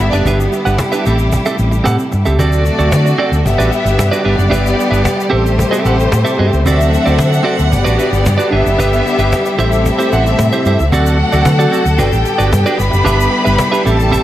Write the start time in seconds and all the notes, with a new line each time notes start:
Already playing: D3 G3 B3 G4
0.00 E4 E5, muted clean electric guitar stroke
0.11 F#1 D4 G4 B4 D5 E5, shaker
0.25 G1 D4 G4 B4 E5, cajon bass, shaker
0.40 muted clean electric guitar stroke, shaker
0.53 muted clean electric guitar stroke, shaker
0.65 G1 D4 G4 B4 F#5, shaker
0.78 muted clean electric guitar stroke, cajon bass, cajon slap, shaker
0.92 D4 G4 B4 E5, shaker
1.05 A1 C3 A3 C4 G4 A4 E5, shaker
1.18 muted clean electric guitar stroke, shaker
1.32 muted clean electric guitar stroke, cajon bass, shaker
1.46 C4 G4 A4 E5, shaker
1.58 A1, muted clean electric guitar stroke, shaker
1.71 muted clean electric guitar stroke, shaker
1.84 A2 C4 G4 A4 F#5, cajon bass, cajon slap, shaker
1.98 muted clean electric guitar stroke, shaker
2.11 G2, muted clean electric guitar stroke, shaker
2.25 C#2 C4 G4 A4 E5, shaker
2.39 D2 C3 F#3 A3 C4 D4 F#4 A4 D5, cajon bass, shaker
2.53 shaker
2.66 muted clean electric guitar stroke, shaker
2.79 D2 C4 F#4 A4 D5, shaker
2.92 D3, muted clean electric guitar stroke, cajon bass, cajon slap, shaker
3.05 muted clean electric guitar stroke, shaker
3.18 C4 F#4 A4 D5
3.32 D2, muted clean electric guitar stroke, shaker
3.45 G1 D3 G3 B3 G4 E5 F#5, muted clean electric guitar stroke, cajon bass, shaker
3.58 A1 D4 F#4 B4 D5, shaker
3.72 muted clean electric guitar stroke, shaker
3.85 G1, muted clean electric guitar stroke, shaker
3.98 G2, muted clean electric guitar stroke, cajon bass, cajon slap, shaker
4.11 D4 F#4 B4 D5, shaker
4.24 G1 B3 D4 E4 G4 B4 D5 E5
4.37 F#1, muted clean electric guitar stroke, shaker
4.50 G1 D4 G4 B4 E5, cajon bass, shaker
4.67 shaker
4.77 muted clean electric guitar stroke, shaker
4.91 G1 D4 G4 B4 E5, shaker
5.04 muted clean electric guitar stroke, cajon bass, cajon slap, shaker
5.16 muted clean electric guitar stroke, shaker
5.30 A1 C3 A3 C4 E4 G4 A4 C5 E5
5.45 muted clean electric guitar stroke, shaker
5.58 muted clean electric guitar stroke, cajon bass, shaker
5.71 C4 G4 A4 E5, shaker
5.85 A1 C4 G4 A4 F#5, shaker
5.98 muted clean electric guitar stroke, shaker
6.11 A2, muted clean electric guitar stroke, cajon bass, cajon slap, shaker
6.25 C4 G4 A4 E5, shaker
6.39 G2 C4 G4 A4 E5
6.52 C#2, muted clean electric guitar stroke, shaker
6.66 D2 F#3 C4 D4 F#4 A4 D5 E5 F#5, cajon bass, shaker
6.81 shaker
6.92 muted clean electric guitar stroke, shaker
7.06 D2 C4 F#4 A4 D5, shaker
7.19 D3, cajon bass, cajon slap, shaker
7.31 muted clean electric guitar stroke, shaker
7.43 C4 F#4 A4 D5
7.58 D2, muted clean electric guitar stroke, shaker
7.71 G1 D3 G3 B3 G4 D5, muted clean electric guitar stroke, cajon bass, shaker
7.84 A1 D4 F#4 B4 D5, shaker
7.98 D4 F#4 B4 E5, shaker
8.11 G1, muted clean electric guitar stroke, shaker
8.24 G2, muted clean electric guitar stroke, cajon bass, cajon slap, shaker
8.38 D4 F#4 B4 D5, shaker
8.51 G1 B3 D4 E4 G4 B4 E5
8.65 F#1, muted clean electric guitar stroke, shaker
8.79 G1 D4 G4 B4 E5, cajon bass, shaker
8.93 shaker
9.06 muted clean electric guitar stroke, shaker
9.19 G1 D4 G4 B4 E5, shaker
9.32 muted clean electric guitar stroke, cajon bass, cajon slap, shaker
9.46 muted clean electric guitar stroke, shaker
9.58 A1 C3 A3 C4 E4 G4 A4 C5 E5, shaker
9.72 muted clean electric guitar stroke, shaker
9.86 muted clean electric guitar stroke, cajon bass, shaker
9.99 E4 G4 C5 E5, shaker
10.12 A1 E4 G4 C5 F#5, shaker
10.26 muted clean electric guitar stroke, shaker
10.39 A2, muted clean electric guitar stroke, cajon bass, cajon slap, shaker
10.52 E4 G4 C5 E5, shaker
10.65 G2 E4 G4 C5 E5, shaker
10.79 C#2, muted clean electric guitar stroke, shaker
10.92 D2 C3 F#3 A3 C4 D4 F#4 A4 D5 F#5, cajon bass, shaker
11.06 shaker
11.19 muted clean electric guitar stroke
11.32 D2 C4 F#4 A4 D5, shaker
11.45 D3, muted clean electric guitar stroke, cajon bass, cajon slap, shaker
11.59 C4 F#4 A4 D5, shaker
11.71 C4 F#4 A4 D5, shaker
11.85 D2, muted clean electric guitar stroke, shaker
11.98 G1 D3 G3 B3 D4 F#4 G4 B4 D5 G5, cajon bass, shaker
12.12 A1, muted clean electric guitar stroke, shaker
12.25 muted clean electric guitar stroke, shaker
12.38 G1 D4 F#4 B4 D5, shaker
12.52 G2, muted clean electric guitar stroke, cajon bass, cajon slap, shaker
12.66 D4 F#4 B4 D5, shaker
12.79 G1 E4 B4 B5, muted clean electric guitar stroke, shaker
12.91 F#1, muted clean electric guitar stroke, shaker
13.04 G1 D4 G4 B4 E5, cajon bass, shaker
13.20 shaker
13.31 muted clean electric guitar stroke
13.45 G1 D4 G4 B4 E5, shaker
13.58 muted clean electric guitar stroke, cajon bass, cajon slap, shaker
13.72 D4 G4 B4 E5, shaker
13.84 A1 C3 A3 C4 G4 A4 E5 A5, shaker
13.99 muted clean electric guitar stroke, shaker
14.11 C4 G4 A4 E5, cajon bass, shaker